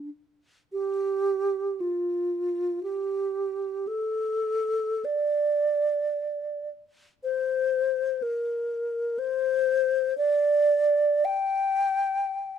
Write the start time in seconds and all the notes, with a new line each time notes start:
0.72 G4
1.80 F4
2.83 G4
3.87 A4
5.05 D5
7.23 C5
8.22 A#4
9.19 C5
10.18 D5
11.25 G5